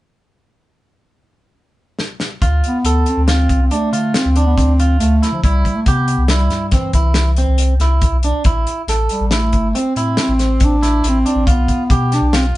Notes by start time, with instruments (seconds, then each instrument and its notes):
1.99 snare
2.20 snare
2.41 sub bass D2, clean electric guitar F4, kick, closed hi-hat
2.64 bass clarinet B3, closed hi-hat
2.84 sub bass D2, clean electric guitar A4, closed hi-hat
3.06 bass clarinet C4, closed hi-hat
3.17 sub bass D2
3.28 bass clarinet C4, clean electric guitar F4, snare, closed hi-hat
3.49 sub bass C2, kick, closed hi-hat
3.62 bass clarinet C4
3.71 bass clarinet A3, clean electric guitar D4, closed hi-hat
3.92 sub bass D3, clean electric guitar F4, closed hi-hat
4.14 bass clarinet C4, snare, closed hi-hat
4.25 sub bass D2
4.36 clean electric guitar D4, closed hi-hat
4.46 bass clarinet B3
4.57 sub bass D2, bass clarinet C4, kick, closed hi-hat
4.80 clean electric guitar F4, closed hi-hat
4.99 sub bass D2, bass clarinet A3, closed hi-hat
5.23 clean electric guitar E4, snare, closed hi-hat
5.32 sub bass D3, bass clarinet F3
5.43 sub bass C2, bass clarinet G3, clean electric guitar E4, kick, closed hi-hat
5.65 kick, closed hi-hat
5.75 bass clarinet A3
5.86 sub bass C3, bass clarinet B3, clean electric guitar G4, kick, closed hi-hat
6.08 closed hi-hat
6.18 sub bass C2
6.28 bass clarinet G3, clean electric guitar E4, snare, closed hi-hat
6.50 sub bass G2, snare, closed hi-hat
6.71 bass clarinet E3, clean electric guitar C4, kick, snare, closed hi-hat
6.93 sub bass C2, clean electric guitar E4, kick, closed hi-hat
7.14 snare, closed hi-hat
7.36 clean electric guitar C4, closed hi-hat
7.48 sub bass C2
7.58 closed hi-hat
7.80 sub bass C2, clean electric guitar E4, snare, closed hi-hat
8.01 kick, closed hi-hat
8.12 sub bass B1
8.23 clean electric guitar D4, closed hi-hat
8.44 sub bass A1, clean electric guitar E4, kick, closed hi-hat
8.67 closed hi-hat
8.87 sub bass A1, clean electric guitar A4, snare, closed hi-hat
9.09 bass clarinet G3, closed hi-hat
9.20 sub bass A1
9.31 bass clarinet A3, clean electric guitar E4, snare, closed hi-hat
9.52 sub bass G1, kick, closed hi-hat
9.75 clean electric guitar C4, bass clarinet C4, closed hi-hat
9.96 sub bass A2, clean electric guitar E4, closed hi-hat
10.17 snare, closed hi-hat
10.21 bass clarinet C4
10.28 sub bass A1
10.39 clean electric guitar C4, snare, closed hi-hat
10.60 sub bass A1, kick, closed hi-hat
10.64 bass clarinet D4
10.83 clean electric guitar E4, snare, closed hi-hat
11.04 sub bass A1, closed hi-hat
11.08 bass clarinet C4
11.26 clean electric guitar D4, closed hi-hat
11.35 sub bass A1
11.47 sub bass B1, bass clarinet B3, clean electric guitar F4, kick, closed hi-hat
11.68 kick, closed hi-hat
11.90 sub bass B2, clean electric guitar G4, kick, closed hi-hat
12.12 bass clarinet D4, snare, closed hi-hat
12.21 sub bass B1
12.33 bass clarinet C4, clean electric guitar F4, snare, closed hi-hat
12.54 sub bass D2